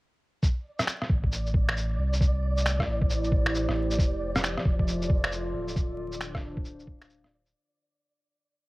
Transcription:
0.43 synth texture D5, kick, shaker
0.79 cross-stick, shaker
0.87 finger snap, shaker
1.02 cross-stick
1.09 sub bass A1, kick
1.24 kick
1.32 shaker
1.46 shaker
1.54 kick
1.69 finger snap
1.77 shaker
1.98 sub bass C2
2.13 shaker
2.21 ambient pad A3, kick, shaker
2.52 ambient pad C5
2.57 ambient pad E4, shaker
2.66 finger snap, shaker
2.79 kick, cross-stick
2.87 sub bass A1, ambient pad G4
3.02 kick
3.10 shaker
3.24 shaker
3.32 kick
3.46 finger snap
3.55 shaker
3.68 sub bass A1, cross-stick
3.91 shaker
3.98 sub bass F1, ambient pad F3, kick, shaker
4.36 ambient pad F4, cross-stick, shaker
4.44 finger snap, shaker
4.57 ambient pad E5, cross-stick
4.65 sub bass F1, kick
4.75 ambient pad A4
4.79 kick
4.88 shaker
5.02 shaker
5.10 kick
5.24 finger snap
5.32 shaker
5.54 sub bass D1
5.68 shaker
5.76 ambient pad D3, kick, shaker
5.93 ambient pad D4
6.07 ambient pad C5
6.12 shaker
6.21 finger snap, shaker
6.35 kick, cross-stick
6.43 sub bass D1
6.54 ambient pad F5, kick
6.65 shaker
6.79 shaker
6.87 kick
7.02 finger snap, shaker
7.10 shaker
7.23 sub bass D1, cross-stick
7.46 shaker

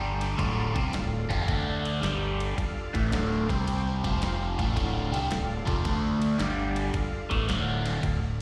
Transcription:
Already playing: fingered electric bass G1, overdriven electric guitar G2 D3 G3, tonewheel organ D4 G4 D5 G5
0.21 snare, ride
0.36 fingered electric bass D1, overdriven electric guitar D2 A2 D3, tonewheel organ F4 A4 D5 F5, kick, ride
0.74 fingered electric bass C2, overdriven electric guitar C3 G3 C4, kick, ride
0.92 fingered electric bass D1, overdriven electric guitar D2 A2, tonewheel organ F4 A4 D5 F5, snare, ride
1.29 fingered electric bass F1, overdriven electric guitar F2 C3 F3, kick, ride
1.47 fingered electric bass D2, overdriven electric guitar D3 A3 D4, kick, ride
1.85 ride
2.01 fingered electric bass G1, overdriven electric guitar G2 D3 G3, tonewheel organ D4 G4 D5 G5, snare, ride
2.40 ride
2.56 tonewheel organ F4 A4 D5 F5, muted overdriven electric guitar stroke, muted fingered electric bass stroke, kick, ride
2.94 fingered electric bass A1, overdriven electric guitar A2 E3 A3, kick, ride
3.11 fingered electric bass D1, overdriven electric guitar D2 A2 D3, tonewheel organ F4 A4 D5 F5, snare, ride
3.49 fingered electric bass C2, overdriven electric guitar C3 G3 C4, tonewheel organ C4 G4 C5 G5, kick, snare, ride
3.68 ride
4.04 fingered electric bass F1, overdriven electric guitar F2 C3 F3, tonewheel organ C4 F4 C5 F5, kick, ride
4.22 snare, ride
4.58 fingered electric bass A1, overdriven electric guitar A2 E3 A3, tonewheel organ F4 A4 D5 F5, kick, ride
4.75 fingered electric bass D1, overdriven electric guitar D2 A2 D3, kick, ride
5.12 fingered electric bass C2, overdriven electric guitar C3 G3 C4, ride
5.30 fingered electric bass D1, overdriven electric guitar D2 A2, tonewheel organ F4 A4 D5 F5, snare, ride
5.66 fingered electric bass F1, overdriven electric guitar F2 C3 F3, kick, ride
5.84 fingered electric bass D2, overdriven electric guitar D3 A3 D4, kick, ride
6.22 ride
6.37 fingered electric bass G1, overdriven electric guitar G2 D3 G3, tonewheel organ D4 G4 D5 G5, snare, ride
6.76 ride
6.93 tonewheel organ F4 A4 D5 F5, muted overdriven electric guitar stroke, muted fingered electric bass stroke, kick, ride
7.30 fingered electric bass A1, overdriven electric guitar A2 E3 A3, kick, ride
7.47 fingered electric bass D1, overdriven electric guitar D2 A2 D3, tonewheel organ F4 A4 D5 F5, snare, ride
7.86 snare, ride
8.02 fingered electric bass D1, overdriven electric guitar D2 A2, kick, ride

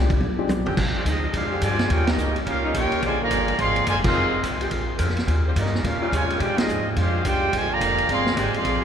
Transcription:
Already playing: upright bass C2
0.10 kick, ride
0.19 upright bass D2, high tom
0.38 grand piano F3 G#3 C4 D4 G4, muted upright bass stroke
0.48 upright bass C2, hi-hat pedal, high tom
0.57 upright bass A#1
0.65 upright bass G#1, saxophone section D3 G#3 C4 G4, floor tom
0.77 upright bass A#1, kick, crash
0.93 trombone section F3 G#3 D4, trumpet section C4 F4 G#4 D5
1.05 upright bass D2, trombone section F3 G#3 D#4, trumpet section C4 F4 G#4 D#5, kick, hi-hat pedal, ride
1.32 upright bass F2, trombone section G#3 D4 F4, trumpet section D4 G#4 C5 F5, kick, ride
1.50 saxophone section D3 G#3 C4 G4
1.61 upright bass G2, trombone section D3 F3 G#3, trumpet section F4 C5 D5 G#5, kick, hi-hat pedal, ride
1.79 snare, ride
1.89 upright bass D#2, saxophone section C#3 G3 C4 F4, trombone section A#3 C#4 G4, trumpet section F4 A#4 C#5 G5, kick, ride
2.06 trombone section G3 A#3 D#4, trumpet section C#4 G4 A#4 D#5, snare, ride
2.17 upright bass C#2, hi-hat pedal
2.36 ride
2.46 upright bass C2, trombone section A#3 C#4 F4, trumpet section C#4 G4 A#4 F5, kick, ride
2.63 saxophone section C#3 G3 C4 D#4
2.74 upright bass A#1, trombone section A#3 C#4 G4, trumpet section F4 A#4 C#5 G5, kick, hi-hat pedal, ride
2.91 muted upright bass stroke, ride
3.02 upright bass A#1, trombone section D3 F3 G#3, trumpet section F4 C5 D5 G#5, kick, ride
3.20 trombone section D3 F3 A#3, trumpet section G#4 D5 F5 A#5
3.31 upright bass G1, kick, hi-hat pedal, ride
3.48 ride
3.58 upright bass G#1, trombone section F3 G#3 C4, trumpet section G#4 D5 F5 C6, kick, ride
3.76 ride
3.86 upright bass F#1, trombone section D3 F3 G#3, trumpet section F4 C5 D5 G#5, kick, hi-hat pedal, ride
4.04 saxophone section D#3 G#3 C4 F4, trombone section D#3 G#3 C4, trumpet section G#4 D#5 F5 C6, kick, crash
4.14 upright bass F1
4.43 upright bass C2, kick, hi-hat pedal, ride
4.60 saxophone section D3 G#3 C4 G4, ride
4.71 upright bass A#1, kick, ride
4.98 upright bass F2, saxophone section D3 G#3 C4 A#4, kick, hi-hat pedal, ride
5.09 snare
5.17 snare, ride
5.26 upright bass D#2, saxophone section C#3 G3 C4 F4, kick, ride
5.46 trombone section C#3 G3 C4, trumpet section A#3 F4 G4 C5
5.56 upright bass G2, trombone section G3 A#3 D#4, trumpet section C#4 G4 A#4 D#5, kick, hi-hat pedal, ride
5.66 snare
5.75 snare
5.84 upright bass A#2, trombone section A#3 C#4 F4, trumpet section C#4 G4 A#4 F5, kick, ride
6.01 saxophone section C#3 G3 C4 F4
6.12 upright bass D#2, trombone section A#2 C#3 G#3, trumpet section F4 A#4 C#5 G#5, kick, hi-hat pedal, ride
6.29 muted upright bass stroke, ride
6.39 upright bass A#2, saxophone section D3 G#3 C4 G4, trombone section G#3 D4 G4, trumpet section F4 C5 D5 G5, kick, ride
6.57 trombone section F3 G#3 D#4, trumpet section C4 F4 G#4 D#5, muted upright bass stroke, snare, ride
6.68 upright bass G#2, hi-hat pedal
6.96 upright bass F2, trombone section G#3 D4 F4, trumpet section D4 G#4 C5 F5, kick, ride
7.24 upright bass C2, trombone section G#3 D4 G4, trumpet section F4 C5 D5 G5, kick, hi-hat pedal, ride
7.53 upright bass A#1, trombone section D3 F3 G#3, trumpet section F4 C5 D5 G#5, kick, ride
7.70 trombone section D3 F3 A#3, trumpet section G#4 D5 F5 A#5
7.80 upright bass F1, kick, hi-hat pedal, ride
7.98 ride
8.09 upright bass G1, trombone section F3 G#3 C4, trumpet section G#4 D5 F5 C6, kick, ride
8.26 snare
8.36 upright bass G#1, trombone section D3 F3 G#3, saxophone section D3 G#3 C4 G4, trumpet section F4 C5 D5 G#5, kick, hi-hat pedal, ride
8.53 trombone section F3 G#3 C4, trumpet section G#4 D5 F5 C6, muted upright bass stroke, ride
8.65 upright bass A#1, kick, ride

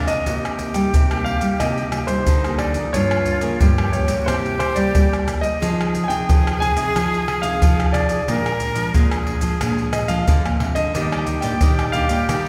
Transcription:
Already playing: nylon-string guitar F2 C3 F3 G#3 D4, flute D4
0.07 cavaquinho A#4 D5 G#5, grand piano D#5, pandeiro, maracas, surdo
0.26 nylon-string guitar C3 A#3 D#4 G4, flute G4, pandeiro, maracas, surdo
0.45 pandeiro, tamborim, maracas
0.59 nylon-string guitar A#3 D#4 G4, pandeiro, maracas, surdo
0.74 nylon-string guitar G3, grand piano G5, pandeiro, maracas
0.94 nylon-string guitar G2 C3, pandeiro, maracas, surdo
1.11 nylon-string guitar A#3 D#4 G4, pandeiro, tamborim, maracas
1.24 grand piano F5, pandeiro, surdo
1.41 nylon-string guitar G3, pandeiro, maracas, surdo
1.60 nylon-string guitar C3 A#3 D#4 G4, grand piano D#5, pandeiro, tamborim, maracas, surdo
1.77 pandeiro, maracas
1.92 nylon-string guitar A#3 D#4 G4, pandeiro, tamborim, maracas
2.07 nylon-string guitar G3, grand piano C5, pandeiro, maracas, surdo
2.26 nylon-string guitar G2 D3, flute D#4, pandeiro, maracas, surdo
2.44 nylon-string guitar A#3 D#4 G4, pandeiro, tamborim, maracas
2.58 grand piano D5, pandeiro, tamborim
2.74 nylon-string guitar F3 A#3 C#4, pandeiro, maracas, surdo
2.93 nylon-string guitar G2, flute F4, grand piano C#5, pandeiro, maracas, surdo
3.11 pandeiro, tamborim, maracas
3.26 pandeiro, maracas, surdo
3.41 nylon-string guitar C#3 F3 A#3 C#4, grand piano A#4, pandeiro, maracas
3.60 nylon-string guitar G2, flute G4, pandeiro, maracas, surdo
3.78 pandeiro, tamborim, maracas
3.92 nylon-string guitar F3 A#3 C#4, grand piano C#5, pandeiro, maracas
4.08 nylon-string guitar A#2, pandeiro, maracas, surdo
4.20 flute F#4
4.26 nylon-string guitar C3 G3 A#3 E4, flute G4, grand piano C5, pandeiro, tamborim, maracas, surdo
4.45 pandeiro, maracas
4.59 grand piano C5, pandeiro, tamborim, maracas
4.75 nylon-string guitar G3 A#3 E4, grand piano D5, pandeiro, maracas, surdo
4.95 nylon-string guitar G2 G3, pandeiro, maracas, surdo
5.13 pandeiro, tamborim, maracas
5.27 nylon-string guitar G3 A#3 E4, pandeiro, tamborim, maracas
5.41 grand piano D#5, pandeiro, maracas, surdo
5.60 nylon-string guitar F3 C4 D#4 G#4, flute G#4, pandeiro, maracas, surdo
5.81 pandeiro, tamborim, maracas
5.95 pandeiro, maracas, surdo
6.04 grand piano G#5
6.08 nylon-string guitar C3 C4 D#4 G#4, grand piano G5, pandeiro, maracas
6.28 nylon-string guitar C3 F3, pandeiro, maracas, surdo
6.47 pandeiro, tamborim, maracas
6.60 nylon-string guitar C4 D#4 G#4, grand piano G#5, pandeiro, maracas, surdo
6.77 nylon-string guitar C3, pandeiro, maracas, surdo
6.95 nylon-string guitar F3 C4 D#4 G#4, pandeiro, tamborim, maracas, surdo
7.14 pandeiro, maracas
7.28 pandeiro, tamborim
7.42 nylon-string guitar C3 C4 D#4 G#4, grand piano F5, pandeiro, maracas, surdo
7.62 nylon-string guitar C3 F3, pandeiro, maracas, surdo
7.80 pandeiro, tamborim, maracas
7.92 nylon-string guitar C4 D#4 G#4, grand piano D5, pandeiro, tamborim, maracas
8.09 pandeiro, maracas, surdo
8.28 nylon-string guitar A#2 F3 G#3 D4, flute A#4, pandeiro, maracas, surdo
8.46 pandeiro, tamborim, maracas
8.60 pandeiro, maracas, surdo
8.75 nylon-string guitar F3 G#3 D4, pandeiro, maracas
8.94 nylon-string guitar F2 A#2, flute G#4, pandeiro, maracas, surdo
9.11 pandeiro, tamborim, maracas
9.27 nylon-string guitar F3 G#3 D4, pandeiro, surdo
9.41 nylon-string guitar F3, pandeiro, maracas, surdo
9.61 nylon-string guitar A#2 F3 G#3 D4, pandeiro, tamborim, maracas, surdo
9.78 pandeiro, maracas
9.93 grand piano D#5, pandeiro, tamborim, maracas
10.08 nylon-string guitar F3 G#3 D4, grand piano F5, pandeiro, maracas, surdo
10.27 nylon-string guitar F2 D3, pandeiro, maracas, surdo
10.45 nylon-string guitar A#2, pandeiro, tamborim, maracas
10.60 nylon-string guitar C3 F3 G#3 D4, pandeiro, tamborim
10.75 nylon-string guitar D3, grand piano D#5, pandeiro, maracas, surdo
10.93 nylon-string guitar D#3 G3 A#3, cavaquinho D4 G4 D5 D#5, flute G4, pandeiro, maracas, surdo
11.12 cavaquinho G4 D5 D#5, pandeiro, tamborim, maracas
11.27 muted cavaquinho stroke, pandeiro, maracas, surdo
11.41 nylon-string guitar A#2 G3 A#3 D4, cavaquinho G4 D5 D#5, grand piano G5, pandeiro, maracas
11.61 nylon-string guitar A#2 D#3, cavaquinho D4 G4 D5 D#5, pandeiro, maracas, surdo
11.79 cavaquinho G4 D5 D#5, pandeiro, tamborim, maracas
11.92 nylon-string guitar G3 A#3 D4, cavaquinho D4 G4 D#5, grand piano F5, pandeiro, maracas
11.97 cavaquinho D5
12.09 nylon-string guitar A#2, cavaquinho G4 D5 D#5, pandeiro, maracas, surdo
12.28 nylon-string guitar D#3 G3 A#3, cavaquinho G4 D5 D#5, pandeiro, tamborim, maracas, surdo

